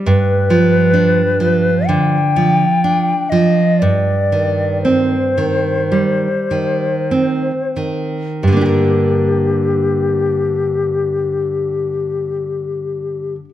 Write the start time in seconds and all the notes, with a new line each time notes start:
0.06 G2 B4
0.50 F3
0.94 D4
1.40 F3
1.87 D3 G5
2.36 F3
2.84 D4
3.30 F3 D#5
3.79 G2 D5
4.32 D#3
4.82 C4 C5
5.38 D#3
5.92 G3
6.51 D#3
7.11 C4
7.76 D#3
8.42 G2 G4
8.48 D3
8.52 A#3
8.57 D4
8.61 G4
8.66 A#4